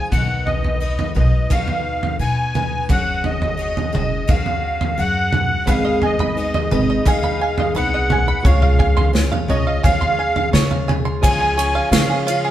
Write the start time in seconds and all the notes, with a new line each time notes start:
Already playing: D#4 F4 G#4
0.11 B1 B2 D#3 F#3 B3 D#4 B4 F#5, kick, floor tom
0.46 D#5, floor tom
0.64 floor tom
0.80 F#3 B3 D#4 B4
0.99 floor tom
1.15 B1 F#3 B3 D#4 B4 D#5, mid tom
1.50 B2 D#3 F#3 B3 D#4 B4 F5, kick, floor tom
1.68 floor tom
2.03 floor tom
2.19 B2 F#3 B3 D#4 B4 G#5
2.54 F#3 B3 D#4 B4, floor tom, mid tom
2.89 F#1 F#3 C#4 F#4 G#4 F#5, kick, floor tom
3.24 D#5, floor tom
3.42 floor tom
3.57 F#3 C#4 F#4 G#4
3.77 floor tom
3.93 F#1 C#4 F#4 G#4 D#5, mid tom
4.28 F#3 C#4 F#4 G#4 F5, kick, floor tom
4.46 floor tom
4.81 floor tom
4.98 F#2 F#3 C#4 F#4 G#4 F#5
5.33 floor tom, mid tom
5.65 G#1 G#2 D#3 G#3 B3 D#4 G#4 B4 F5, kick, floor tom
5.85 D#5
6.02 D#5 G#5, floor tom
6.19 B5, floor tom
6.34 G#3 B3 D#4 B4
6.39 D#4 G#4
6.54 D#5, floor tom
6.71 G#1 G#3 B3 D#4 G#4 B4 D#5, mid tom
6.90 D#5
7.04 G#2 D#3 G#3 B3 D#4 G#4 B4 G#5, kick, floor tom
7.09 F5
7.23 B5, floor tom
7.41 G#5
7.58 D#5, floor tom
7.73 C2 G#3 B3 D#4 G#4 B4 F#5
7.94 D#5
8.10 G#5, floor tom, mid tom
8.28 B5
8.42 C#2 C#3 G#3 C#4 F4 C#5 F5, kick, floor tom
8.46 C#4 F4 G#4
8.62 F5, mid tom
8.79 G#5, kick, floor tom
8.97 C6, floor tom
9.12 G#3 C#4 F4 G#4 C#5, snare
9.32 F5, floor tom
9.48 C#2 F4 G#4 C#5 D#5, mid tom
9.53 C#4
9.67 F5
9.83 C#3 G#3 C#4 F4 G#4 C#5 F5 G#5, kick, floor tom
10.01 C6, floor tom
10.19 G#5
10.36 F5, floor tom
10.51 C#3 G#3 C#4 F4 C#5, snare
10.56 F4 G#4
10.71 F5, floor tom
10.88 G#5, floor tom, mid tom
11.05 C6
11.21 C#2 C#3 F3 G#3 C#4 F4 G#4 C#5 G#5, kick, ride
11.41 G#4
11.57 C#4 F4 G#4 C#5 G#5, ride
11.75 F5
11.90 C#3 F3 G#3 C#4 F4 G#4 C#5 F5, snare, ride
12.10 G#4
12.25 F3 G#3 C#4 F4 G#4 C#5 F5, ride
12.29 C#4
12.45 G#4